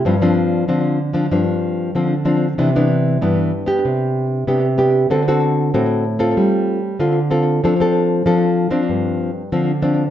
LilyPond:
\new Staff \with { instrumentName = "Nylon-string guitar" } { \time 4/4 \key g \mixolydian \tempo 4 = 95 << { <f c' d'>16 <f c' d'>8. <f c' d'>8 r16 <f c' d'>16 <f c' d'>4 <f c' d'>16 r16 <f c' d'>16 r16 | <e b d'>16 <e b d'>8. <e b d'>8 r16 <b d' g'>4 r16 <b d' g'>16 r16 <b d' g'>8 | <c' fis' a'>16 <c' fis' a'>8. <c' fis' a'>8 r16 <c' f' a'>4 r16 <c' f' a'>16 r16 <c' f' a'>8 | <c' d' a'>16 <c' d' a'>8. <c' d' a'>8. <f c' d'>4 r16 <f c' d'>16 r16 <f c' d'>16 r16 | } \\ { g,4 d4 g,4 d4 | c4 g,4 c4 c4 | d4 a,4 g4 d4 | f4 f4 g,4 d4 | } >> }